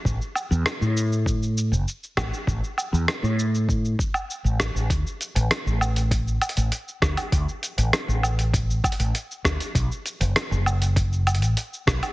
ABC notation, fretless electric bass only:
X:1
M:4/4
L:1/16
Q:1/4=99
K:Amix
V:1 name="Fretless electric bass" clef=bass
A,,, z2 E,, z A,,6 F,,, z2 A,,, z | A,,, z2 E,, z A,,4- A,, z3 A,,,2 A,,, | D,, z2 A,,, z A,,,4- A,,, z A,,, z2 D,, z | D,, z2 A,,, z A,,,4- A,,, z A,,, z2 D,, z |
B,,, z2 F,,, z F,,,6 A,,, z2 B,,, z |]